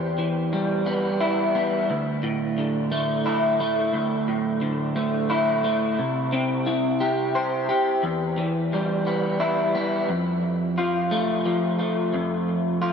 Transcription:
0, 0, Header, 1, 2, 480
1, 0, Start_track
1, 0, Tempo, 683371
1, 1328, Time_signature, 6, 3, 24, 8
1, 9080, End_track
2, 0, Start_track
2, 0, Title_t, "Clean electric guitar"
2, 0, Program_c, 0, 27
2, 0, Note_on_c, 0, 40, 74
2, 0, Note_on_c, 0, 64, 58
2, 127, Note_on_c, 0, 52, 60
2, 368, Note_off_c, 0, 64, 0
2, 371, Note_on_c, 0, 55, 64
2, 606, Note_on_c, 0, 59, 64
2, 847, Note_on_c, 0, 64, 66
2, 1081, Note_off_c, 0, 59, 0
2, 1089, Note_off_c, 0, 40, 0
2, 1089, Note_on_c, 0, 59, 66
2, 1329, Note_off_c, 0, 59, 0
2, 1330, Note_off_c, 0, 55, 0
2, 1332, Note_on_c, 0, 38, 72
2, 1353, Note_off_c, 0, 52, 0
2, 1353, Note_off_c, 0, 64, 0
2, 1567, Note_on_c, 0, 45, 66
2, 1812, Note_on_c, 0, 50, 58
2, 2049, Note_on_c, 0, 57, 72
2, 2288, Note_on_c, 0, 64, 73
2, 2522, Note_off_c, 0, 57, 0
2, 2530, Note_on_c, 0, 57, 65
2, 2531, Note_off_c, 0, 38, 0
2, 2762, Note_on_c, 0, 38, 72
2, 2769, Note_off_c, 0, 45, 0
2, 3007, Note_on_c, 0, 45, 64
2, 3011, Note_off_c, 0, 50, 0
2, 3241, Note_on_c, 0, 50, 66
2, 3474, Note_off_c, 0, 57, 0
2, 3483, Note_on_c, 0, 57, 68
2, 3718, Note_off_c, 0, 64, 0
2, 3721, Note_on_c, 0, 64, 79
2, 3953, Note_off_c, 0, 57, 0
2, 3962, Note_on_c, 0, 57, 64
2, 3966, Note_off_c, 0, 38, 0
2, 4204, Note_on_c, 0, 48, 75
2, 4205, Note_off_c, 0, 50, 0
2, 4206, Note_off_c, 0, 57, 0
2, 4208, Note_off_c, 0, 45, 0
2, 4442, Note_on_c, 0, 60, 68
2, 4681, Note_off_c, 0, 64, 0
2, 4681, Note_on_c, 0, 64, 70
2, 4919, Note_on_c, 0, 67, 76
2, 5163, Note_on_c, 0, 72, 79
2, 5393, Note_off_c, 0, 67, 0
2, 5401, Note_on_c, 0, 67, 69
2, 5406, Note_off_c, 0, 48, 0
2, 5640, Note_on_c, 0, 40, 80
2, 5645, Note_off_c, 0, 60, 0
2, 5645, Note_off_c, 0, 64, 0
2, 5645, Note_off_c, 0, 67, 0
2, 5646, Note_off_c, 0, 72, 0
2, 5884, Note_on_c, 0, 52, 72
2, 6133, Note_on_c, 0, 55, 67
2, 6369, Note_on_c, 0, 59, 75
2, 6602, Note_on_c, 0, 64, 81
2, 6840, Note_off_c, 0, 59, 0
2, 6844, Note_off_c, 0, 40, 0
2, 6848, Note_on_c, 0, 59, 69
2, 7085, Note_off_c, 0, 64, 0
2, 7086, Note_off_c, 0, 52, 0
2, 7086, Note_on_c, 0, 41, 81
2, 7088, Note_off_c, 0, 59, 0
2, 7090, Note_off_c, 0, 55, 0
2, 7569, Note_on_c, 0, 65, 73
2, 7806, Note_on_c, 0, 57, 82
2, 8046, Note_on_c, 0, 53, 69
2, 8280, Note_off_c, 0, 57, 0
2, 8283, Note_on_c, 0, 57, 71
2, 8286, Note_off_c, 0, 41, 0
2, 8524, Note_on_c, 0, 41, 83
2, 8999, Note_off_c, 0, 65, 0
2, 9002, Note_on_c, 0, 65, 79
2, 9080, Note_off_c, 0, 41, 0
2, 9080, Note_off_c, 0, 53, 0
2, 9080, Note_off_c, 0, 57, 0
2, 9080, Note_off_c, 0, 65, 0
2, 9080, End_track
0, 0, End_of_file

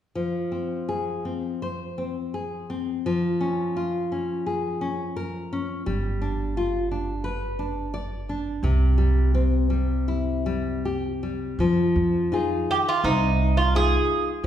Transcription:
0, 0, Header, 1, 4, 480
1, 0, Start_track
1, 0, Key_signature, -4, "minor"
1, 0, Tempo, 723764
1, 101, Time_signature, 4, 2, 24, 8
1, 2499, Tempo, 696056
1, 6339, Tempo, 745342
1, 8259, Tempo, 706714
1, 9719, End_track
2, 0, Start_track
2, 0, Title_t, "Bouzouki"
2, 0, Program_c, 0, 25
2, 8523, Note_on_c, 0, 67, 62
2, 8557, Note_off_c, 0, 67, 0
2, 8645, Note_on_c, 0, 65, 60
2, 8753, Note_on_c, 0, 63, 61
2, 8760, Note_off_c, 0, 65, 0
2, 9112, Note_on_c, 0, 65, 58
2, 9121, Note_off_c, 0, 63, 0
2, 9233, Note_off_c, 0, 65, 0
2, 9239, Note_on_c, 0, 68, 83
2, 9566, Note_off_c, 0, 68, 0
2, 9719, End_track
3, 0, Start_track
3, 0, Title_t, "Nylon-string guitar"
3, 0, Program_c, 1, 24
3, 102, Note_on_c, 1, 53, 43
3, 343, Note_on_c, 1, 60, 32
3, 581, Note_off_c, 1, 60, 0
3, 588, Note_on_c, 1, 68, 38
3, 824, Note_off_c, 1, 68, 0
3, 829, Note_on_c, 1, 60, 33
3, 1062, Note_off_c, 1, 60, 0
3, 1076, Note_on_c, 1, 72, 40
3, 1303, Note_off_c, 1, 72, 0
3, 1312, Note_on_c, 1, 60, 39
3, 1543, Note_off_c, 1, 60, 0
3, 1552, Note_on_c, 1, 68, 36
3, 1783, Note_off_c, 1, 68, 0
3, 1789, Note_on_c, 1, 60, 36
3, 2000, Note_off_c, 1, 53, 0
3, 2020, Note_off_c, 1, 60, 0
3, 2029, Note_on_c, 1, 53, 48
3, 2259, Note_on_c, 1, 61, 38
3, 2491, Note_off_c, 1, 61, 0
3, 2497, Note_on_c, 1, 65, 41
3, 2737, Note_off_c, 1, 65, 0
3, 2740, Note_on_c, 1, 61, 35
3, 2977, Note_off_c, 1, 61, 0
3, 2979, Note_on_c, 1, 68, 37
3, 3216, Note_off_c, 1, 68, 0
3, 3219, Note_on_c, 1, 61, 43
3, 3459, Note_off_c, 1, 61, 0
3, 3462, Note_on_c, 1, 70, 44
3, 3701, Note_off_c, 1, 70, 0
3, 3711, Note_on_c, 1, 61, 43
3, 3925, Note_off_c, 1, 53, 0
3, 3941, Note_off_c, 1, 61, 0
3, 3944, Note_on_c, 1, 55, 52
3, 4187, Note_on_c, 1, 62, 44
3, 4418, Note_off_c, 1, 62, 0
3, 4432, Note_on_c, 1, 65, 47
3, 4660, Note_off_c, 1, 65, 0
3, 4669, Note_on_c, 1, 62, 40
3, 4893, Note_on_c, 1, 71, 48
3, 4896, Note_off_c, 1, 62, 0
3, 5127, Note_off_c, 1, 71, 0
3, 5135, Note_on_c, 1, 62, 39
3, 5367, Note_off_c, 1, 62, 0
3, 5374, Note_on_c, 1, 74, 50
3, 5607, Note_off_c, 1, 74, 0
3, 5620, Note_on_c, 1, 62, 41
3, 5823, Note_off_c, 1, 55, 0
3, 5850, Note_off_c, 1, 62, 0
3, 5856, Note_on_c, 1, 48, 53
3, 6092, Note_on_c, 1, 55, 45
3, 6331, Note_off_c, 1, 55, 0
3, 6344, Note_on_c, 1, 60, 48
3, 6569, Note_off_c, 1, 60, 0
3, 6573, Note_on_c, 1, 55, 39
3, 6806, Note_off_c, 1, 55, 0
3, 6818, Note_on_c, 1, 64, 45
3, 7052, Note_off_c, 1, 64, 0
3, 7062, Note_on_c, 1, 55, 47
3, 7300, Note_off_c, 1, 55, 0
3, 7316, Note_on_c, 1, 67, 43
3, 7549, Note_off_c, 1, 67, 0
3, 7558, Note_on_c, 1, 55, 45
3, 7765, Note_off_c, 1, 48, 0
3, 7787, Note_off_c, 1, 55, 0
3, 7797, Note_on_c, 1, 53, 53
3, 8250, Note_off_c, 1, 53, 0
3, 8260, Note_on_c, 1, 63, 38
3, 8267, Note_on_c, 1, 65, 36
3, 8271, Note_on_c, 1, 68, 44
3, 8649, Note_off_c, 1, 63, 0
3, 8653, Note_off_c, 1, 65, 0
3, 8656, Note_off_c, 1, 68, 0
3, 8752, Note_on_c, 1, 48, 51
3, 9216, Note_off_c, 1, 48, 0
3, 9232, Note_on_c, 1, 63, 40
3, 9233, Note_on_c, 1, 65, 40
3, 9235, Note_on_c, 1, 68, 41
3, 9609, Note_off_c, 1, 63, 0
3, 9609, Note_off_c, 1, 65, 0
3, 9611, Note_off_c, 1, 68, 0
3, 9719, End_track
4, 0, Start_track
4, 0, Title_t, "Upright bass"
4, 0, Program_c, 2, 32
4, 3947, Note_on_c, 2, 31, 61
4, 5825, Note_off_c, 2, 31, 0
4, 5849, Note_on_c, 2, 36, 65
4, 7762, Note_off_c, 2, 36, 0
4, 7788, Note_on_c, 2, 41, 73
4, 7942, Note_off_c, 2, 41, 0
4, 8026, Note_on_c, 2, 41, 73
4, 8490, Note_off_c, 2, 41, 0
4, 8747, Note_on_c, 2, 36, 85
4, 9367, Note_off_c, 2, 36, 0
4, 9697, Note_on_c, 2, 41, 77
4, 9719, Note_off_c, 2, 41, 0
4, 9719, End_track
0, 0, End_of_file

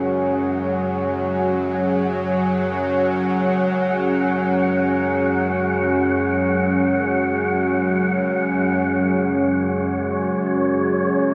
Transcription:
0, 0, Header, 1, 4, 480
1, 0, Start_track
1, 0, Tempo, 500000
1, 10886, End_track
2, 0, Start_track
2, 0, Title_t, "Synth texture"
2, 0, Program_c, 0, 99
2, 0, Note_on_c, 0, 78, 66
2, 8541, Note_on_c, 0, 73, 78
2, 8558, Note_off_c, 0, 78, 0
2, 10886, Note_off_c, 0, 73, 0
2, 10886, End_track
3, 0, Start_track
3, 0, Title_t, "Ambient pad"
3, 0, Program_c, 1, 92
3, 0, Note_on_c, 1, 61, 67
3, 0, Note_on_c, 1, 66, 64
3, 0, Note_on_c, 1, 68, 64
3, 0, Note_on_c, 1, 73, 69
3, 10886, Note_off_c, 1, 61, 0
3, 10886, Note_off_c, 1, 66, 0
3, 10886, Note_off_c, 1, 68, 0
3, 10886, Note_off_c, 1, 73, 0
3, 10886, End_track
4, 0, Start_track
4, 0, Title_t, "Synth drone"
4, 0, Program_c, 2, 95
4, 0, Note_on_c, 2, 42, 69
4, 0, Note_on_c, 2, 54, 69
4, 8489, Note_off_c, 2, 54, 0
4, 8492, Note_off_c, 2, 42, 0
4, 8500, Note_on_c, 2, 54, 72
4, 8503, Note_on_c, 2, 42, 75
4, 10886, Note_off_c, 2, 42, 0
4, 10886, Note_off_c, 2, 54, 0
4, 10886, End_track
0, 0, End_of_file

